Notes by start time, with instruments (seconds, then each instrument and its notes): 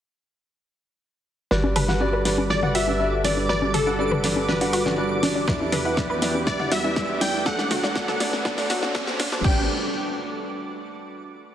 1.51 analog synth bass G1, grand piano G2 G3 F#4 B4 D5, analog synth pad G3 D4 F#4 A4 B4, synth arpeggio sound B4, synth texture D6, snare, riser
1.64 grand piano G2 G3 F#4 B4 D5, synth arpeggio sound D4, high conga
1.76 synth arpeggio sound A4, digital synth lead B4, open hi-hat, mid tom
1.88 grand piano G2 G3 F#4 B4 F#5, synth arpeggio sound D4, snare
2.01 grand piano G2 G3 F#4 B4 D5, synth arpeggio sound D4, high conga
2.13 synth arpeggio sound B4
2.25 grand piano G2 G3 F#4 B4 D5, synth arpeggio sound D4, snare, open hi-hat
2.38 high conga
2.50 grand piano G2 G3 F#4 B4 D5, synth arpeggio sound D4, digital synth lead D5, snare
2.63 grand piano G2 G3 F#4 B4 F#5, synth arpeggio sound D4, mid tom
2.75 synth arpeggio sound F#4, digital synth lead E5, open hi-hat
2.87 grand piano G2 G3 F#4 B4 D5, synth arpeggio sound D4, high conga
3.00 grand piano G2 G3 F#4 B4 D5, synth arpeggio sound D4
3.24 grand piano G2 G3 F#4 B4 D5, synth arpeggio sound D4, digital synth lead D5, snare, open hi-hat, high conga
3.37 synth arpeggio sound D4
3.49 grand piano G2 G3 F#4 B4 D5, synth arpeggio sound B4, digital synth lead D5, snare
3.62 grand piano G2 G3 F#4 B4 D5, synth arpeggio sound D4, high conga
3.74 synth arpeggio sound A4, digital synth lead A4, open hi-hat, mid tom
3.87 grand piano G2 G3 F#4 B4 F#5, synth arpeggio sound D4
3.99 grand piano G2 G3 F#4 B4 D5, synth arpeggio sound D4, high conga
4.11 synth arpeggio sound B4, mid tom
4.24 grand piano G2 G3 F#4 B4 D5, synth arpeggio sound D4, snare, open hi-hat
4.36 high conga
4.48 grand piano G2 G3 F#4 B4 D5, synth arpeggio sound D4, digital synth lead B4, snare
4.61 grand piano G2 G3 F#4 B4 F#5, synth arpeggio sound D4, open hi-hat
4.73 synth arpeggio sound F#4, open hi-hat
4.86 grand piano G2 G3 F#4 B4 D5, synth arpeggio sound D4, snare, high conga
4.98 grand piano G2 G3 F#4 B4 D5, synth arpeggio sound D4
5.23 grand piano G3 F#4 B4 D5, synth arpeggio sound D4, snare, open hi-hat, high conga
5.35 synth arpeggio sound D4
5.48 analog synth bass E2, analog synth pad E3 B3 G4, grand piano G3 E4 B4, synth arpeggio sound B4, kick, snare
5.60 grand piano G3 E4 B4 D5, synth arpeggio sound E4, high conga
5.72 synth arpeggio sound A4, digital synth lead B4, snare, open hi-hat, mid tom
5.85 grand piano G3 E4 B4 F#5, synth arpeggio sound E4
5.97 grand piano G3 E4 B4 D5, synth arpeggio sound E4, kick, snare, high conga
6.10 synth arpeggio sound B4
6.22 grand piano G3 E4 B4 D5, synth arpeggio sound E4, snare, open hi-hat
6.35 high conga
6.47 grand piano G3 E4 B4 D5, synth arpeggio sound E4, digital synth lead D5, kick, snare
6.59 grand piano G3 E4 B4 F#5, synth arpeggio sound E4, mid tom
6.72 synth arpeggio sound F#4, digital synth lead E5, snare, open hi-hat
6.84 grand piano G3 E4 B4 D5, synth arpeggio sound E4, high conga
6.96 grand piano G3 E4, synth arpeggio sound E4, kick, snare
7.21 grand piano G3 E4 B4 D5, synth arpeggio sound E4, digital synth lead G5, snare, open hi-hat, high conga
7.34 synth arpeggio sound E4
7.46 analog synth bass D2, grand piano F#3 D4 A4 D5, analog synth pad A3, synth arpeggio sound A4, digital synth lead F#5, kick, snare
7.58 grand piano F#3 D4 A4 D5, synth arpeggio sound D4, snare, high conga
7.71 synth arpeggio sound F#4, snare, open hi-hat, mid tom
7.83 grand piano F#3 D4 A4 F#5, synth arpeggio sound D4, snare
7.95 grand piano F#3 D4 A4 D5, synth arpeggio sound D4, kick, snare, high conga
8.08 synth arpeggio sound A4, snare, mid tom
8.20 grand piano F#3 D4 A4 D5, synth arpeggio sound D4, snare, open hi-hat
8.33 snare, high conga
8.45 grand piano F#3 D4 A4 D5, synth arpeggio sound D4, kick, snare
8.58 grand piano F#3 D4 A4 F#5, synth arpeggio sound D4, snare, open hi-hat
8.70 grand piano F#3 D4 A4 D5, synth arpeggio sound F#4, snare, open hi-hat
8.82 grand piano F#3 D4 A4 F#5, synth arpeggio sound D4, snare, high conga
8.95 synth arpeggio sound D4, kick, snare
9.07 grand piano F#3 D4 A4 C5, snare
9.19 synth arpeggio sound D4, snare, open hi-hat, high conga
9.32 grand piano G2 F#3 D4 A4 C5, synth arpeggio sound D4, snare
9.44 analog synth bass G1, analog synth pad G3 D4 F#4 A4 B4, grand piano G3 F#4 D5, synth arpeggio sound G4, digital synth lead G5, kick, crash